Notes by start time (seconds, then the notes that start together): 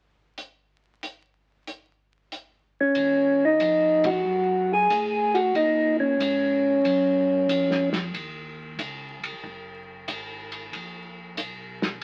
0.38 closed hi-hat
1.03 closed hi-hat
1.67 closed hi-hat
2.32 closed hi-hat
2.81 C#4
2.95 D#2, kick, ride
3.45 D#4
3.60 F2, kick, hi-hat pedal, ride
4.04 F#4, kick, ride
4.25 F#2
4.73 G#4
4.90 A2, kick, hi-hat pedal, ride
5.34 F#4, ride
5.55 A#2 D#4, kick, ride
6.00 C#4
6.19 G#2, kick, hi-hat pedal, ride
6.84 F#2, kick, ride
7.48 F2, kick, hi-hat pedal, ride
7.71 snare
7.93 snare, ride
8.14 D#2, kick, ride
8.78 C#2, kick, hi-hat pedal, ride
9.23 C#2, ride
9.43 F#1, kick
10.08 G#1, kick, hi-hat pedal, ride
10.52 ride
10.73 A#1, kick, ride
11.37 B1, kick, hi-hat pedal, ride
11.82 snare